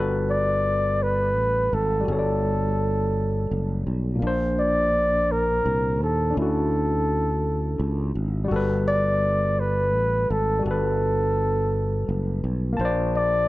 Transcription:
Already playing: fretless electric bass G1, tine electric piano G3 F#4 A4
0.00 tine electric piano B4
0.30 flugelhorn D5
1.03 flugelhorn B4
1.37 fretless electric bass A1
1.73 fretless electric bass G#1, flugelhorn A4
2.00 tine electric piano G3 F#4
2.08 fretless electric bass G1, tine electric piano A4, flugelhorn A4
2.12 tine electric piano C#5
2.19 tine electric piano D5
3.51 fretless electric bass F#1
3.87 fretless electric bass B1
4.15 tine electric piano A#2
4.19 fretless electric bass A#1, tine electric piano A#3 D4
4.27 tine electric piano C5
4.60 flugelhorn D5
5.31 flugelhorn A#4
5.66 fretless electric bass C2
6.02 fretless electric bass D#2, flugelhorn A4
6.30 tine electric piano C#4 D4
6.37 fretless electric bass D2, tine electric piano E4, flugelhorn A4
6.42 tine electric piano F#4
7.80 fretless electric bass C#2
8.15 fretless electric bass G#1
8.44 tine electric piano G3 F#4
8.51 fretless electric bass G1, tine electric piano A4
8.56 tine electric piano B4
8.87 flugelhorn D5
9.60 flugelhorn B4
9.94 fretless electric bass A1
10.30 fretless electric bass G#1, flugelhorn A4
10.59 tine electric piano G3 F#4
10.66 fretless electric bass G1, flugelhorn A4, tine electric piano A4
10.71 tine electric piano B4
12.09 fretless electric bass F#1
12.44 fretless electric bass B1
12.73 tine electric piano A#3
12.77 fretless electric bass A#1, tine electric piano A5
12.81 tine electric piano C5
12.85 tine electric piano D5
13.17 flugelhorn D5

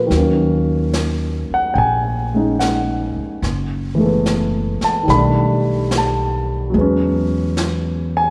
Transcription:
Already playing: grand piano F3 G#3 B3 D4 F4 G#4 A#4 B4 F5
0.07 upright bass D#2, grand piano D#3 F#3, brush sweep, snare
0.14 grand piano A#3 C#4
0.93 snare, hi-hat pedal
1.50 grand piano F#5, muted upright bass stroke
1.74 upright bass A#1, grand piano G5, brush sweep
1.78 grand piano G#5
2.34 grand piano G#3 C#4 D#4
2.59 grand piano F#5, snare, hi-hat pedal
3.17 muted upright bass stroke
3.42 upright bass F#1, brush sweep, snare
3.95 grand piano E3 G#3
4.00 grand piano A3
4.05 grand piano B3
4.26 snare, hi-hat pedal
4.81 grand piano A5, muted upright bass stroke, snare
5.03 grand piano D#3
5.08 upright bass B1, grand piano G3 B5, brush sweep, snare
5.12 grand piano A3 D4
5.91 snare, hi-hat pedal
5.98 grand piano A5
6.70 grand piano F#3 G#3
6.74 upright bass E2, brush sweep
6.78 grand piano B3 C#4
7.57 snare, hi-hat pedal
8.17 grand piano G#5

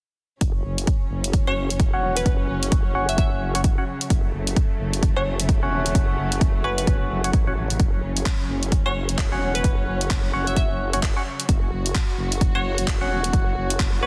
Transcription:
0.41 wobble bass F#1, string section C#3 F#3 C#4, kick, closed hi-hat
0.64 wobble bass F#1
0.78 closed hi-hat
0.87 kick, closed hi-hat
1.10 wobble bass F#1
1.24 closed hi-hat
1.33 kick, closed hi-hat
1.47 wobble bass F#1, synth stab C#4 F#4 C#5 F#5, synth pluck C#5
1.70 closed hi-hat
1.80 kick, closed hi-hat
1.93 wobble bass E1, synth stab C#4 F#4 C#5 F#5
2.17 synth pluck B4, closed hi-hat
2.26 wobble bass F#1, kick, closed hi-hat
2.49 wobble bass F#1
2.63 closed hi-hat
2.72 wobble bass F#1, kick, closed hi-hat
2.95 wobble bass F#1, synth stab C#4 F#4 C#5 F#5
3.09 synth pluck E5, closed hi-hat
3.18 synth pluck E5, kick, closed hi-hat
3.32 wobble bass F#1
3.55 synth stab C#4 F#4 C#5 F#5, closed hi-hat
3.64 kick, closed hi-hat
3.78 synth stab C#4 F#4 C#5 F#5
4.01 closed hi-hat
4.10 wobble bass F#1, string section A3, kick, closed hi-hat
4.33 wobble bass F#1
4.47 closed hi-hat
4.56 kick, closed hi-hat
4.80 wobble bass F#1
4.93 closed hi-hat
5.03 kick, closed hi-hat
5.17 wobble bass F#1, synth stab C#4 F#4 C#5 F#5, synth pluck C#5
5.40 closed hi-hat
5.49 kick, closed hi-hat
5.63 wobble bass E1, synth stab C#4 F#4 C#5 F#5
5.86 closed hi-hat
5.95 wobble bass F#1, kick, closed hi-hat
6.18 wobble bass F#1
6.32 closed hi-hat
6.41 wobble bass F#1, kick, closed hi-hat
6.64 wobble bass F#1, synth stab C#4 F#4 C#5 F#5, synth pluck B4
6.78 synth pluck B4, closed hi-hat
6.87 wobble bass G1, kick, closed hi-hat
7.01 wobble bass F#1
7.10 wobble bass F#1
7.24 synth stab C#4 F#4 C#5 F#5, closed hi-hat
7.33 wobble bass A1, kick, closed hi-hat
7.47 synth stab C#4 F#4 C#5 F#5
7.70 closed hi-hat
7.80 wobble bass F#1, string section C#4, kick, closed hi-hat
8.03 wobble bass F#1
8.17 closed hi-hat
8.26 kick, clap, closed hi-hat
8.49 wobble bass F#1
8.63 closed hi-hat
8.72 kick, closed hi-hat
8.86 wobble bass F#1, synth stab C#4 F#4 C#5 F#5, synth pluck C#5
9.09 closed hi-hat
9.18 kick, clap, closed hi-hat
9.32 wobble bass E1, synth stab C#4 F#4 C#5 F#5
9.55 synth pluck B4, closed hi-hat
9.64 wobble bass F#1, kick, closed hi-hat
9.87 wobble bass F#1
10.01 closed hi-hat
10.10 wobble bass F#1, kick, clap, closed hi-hat
10.33 wobble bass F#1, synth stab C#4 F#4 C#5 F#5
10.47 synth pluck E5, closed hi-hat
10.56 synth pluck E5, kick, closed hi-hat
10.70 wobble bass F#1
10.93 synth stab C#4 F#4 C#5 F#5, closed hi-hat
11.03 kick, clap, closed hi-hat
11.16 synth stab C#4 F#4 C#5 F#5
11.40 closed hi-hat
11.49 wobble bass F#1, string section F#4, kick, closed hi-hat
11.72 wobble bass F#1
11.86 closed hi-hat
11.95 kick, clap, closed hi-hat
12.18 wobble bass F#1
12.32 closed hi-hat
12.41 kick, closed hi-hat
12.55 wobble bass F#1, synth stab C#4 F#4 C#5 F#5, synth pluck C#5
12.78 closed hi-hat
12.87 kick, clap, closed hi-hat
13.01 wobble bass E1, synth stab C#4 F#4 C#5 F#5
13.24 closed hi-hat
13.33 wobble bass F#1, kick, closed hi-hat
13.56 wobble bass F#1
13.70 closed hi-hat
13.80 wobble bass F#1, kick, clap, closed hi-hat
14.03 wobble bass F#1, synth stab C#4 F#4 C#5 F#5, synth pluck B4

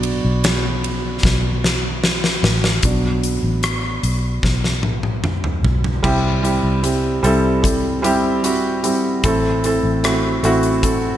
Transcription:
Already playing: fingered electric bass B1, felt piano F#3 B3 D4 F#4 D5
0.03 ride
0.25 fingered electric bass B1
0.44 snare, ride
0.84 ride
1.23 fingered electric bass B1, kick, snare
1.64 snare
2.04 snare
2.24 snare
2.43 fingered electric bass A1, snare
2.64 snare
2.83 fingered electric bass B1, felt piano F#3 B3 D4, kick, closed hi-hat
3.23 closed hi-hat
3.43 fingered electric bass A1
3.63 cross-stick, closed hi-hat
4.03 fingered electric bass B1, closed hi-hat
4.43 fingered electric bass B1, kick, snare
4.64 snare
4.83 high tom
5.03 high tom
5.24 mid tom
5.44 mid tom
5.63 fingered electric bass B1, floor tom
5.84 floor tom
6.03 fingered electric bass C2, felt piano C3 G3 C4 E4 G4, kick, crash
6.42 felt piano G3 C4 E4 G4, closed hi-hat
6.63 fingered electric bass C2
6.83 felt piano G3 C4 E4 G4, closed hi-hat
7.23 fingered electric bass C2, felt piano G3 C4 E4 A4, closed hi-hat
7.62 felt piano G3 C4 E4 A4, kick, closed hi-hat
8.02 felt piano G3 C4 E4 G4, closed hi-hat
8.43 felt piano G3 C4 E4 F#4, closed hi-hat
8.83 felt piano G3 C4 E4 G4, closed hi-hat
9.23 fingered electric bass A1, felt piano A2 A3 C4 E4 A4, kick, closed hi-hat
9.64 felt piano A3 C4 E4 A4, closed hi-hat
9.83 fingered electric bass A1
10.03 felt piano A3 C4 E4 F#4, cross-stick, closed hi-hat
10.43 fingered electric bass A1, felt piano A3 C4 E4 F#4, closed hi-hat
10.63 closed hi-hat
10.82 felt piano A3 C4 E4 A4, kick, closed hi-hat

